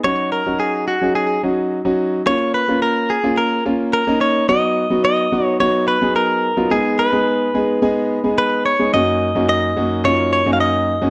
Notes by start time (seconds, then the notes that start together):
0.04 F#3 C#4 D#4 F#4 C#5
0.32 A#4
0.46 F#3 C#4 D#4 F#4
0.60 G#4
0.88 F#4
1.01 F#3 C#4 D#4 G#4
1.15 G#4
1.43 F#3 C#4 D#4 F#4
1.85 F#3 C#4 D#4 F#4
2.26 A#3 C#4 F4 C#5
2.54 B4
2.68 A#3 C#4 F4
2.82 A#4
3.10 G#4
3.24 A#3 C#4 F4
3.38 A#4
3.65 A#3 C#4 F4
3.93 A#4
4.07 A#3 C#4 D#4
4.21 C#5
4.49 F#3 B3 D#4 F#4 D#5
4.90 F#3 B3 D#4 F#4
5.05 D#5
5.32 F#3 B3 D#4 F#4
5.45 C#5
5.60 F#3 B3 D#4 F#4 C#5
5.88 B4
6.01 F#3 B3 D#4 G#4
6.16 A#4
6.57 F#3 B3 D#4 F4
6.71 G#3 B3 D#4 G#4
6.99 B4
7.12 G#3 B3 D#4 G#4
7.54 G#3 B3 D#4 G#4
7.82 G#3 B3 D#4 G#4
8.24 G#3 B3 D#4 G#4
8.38 B4
8.66 C#5
8.79 G#3 B3 D#4 G#4
8.94 F#2 A#3 C#4 D#4 F#4 D#5
9.35 F#2 A#3 C#4 D#4 F#4
9.49 D#5
9.76 F#2 A#3 C#4 D#4 F#4
10.04 F#2 A#3 C#4 D#4 F4 C#5
10.33 C#5
10.46 F#2 A#3 C#4 D#4 F#4
10.53 F5
10.60 D#5
11.01 F#2 A#3 C#4 D#4 F#4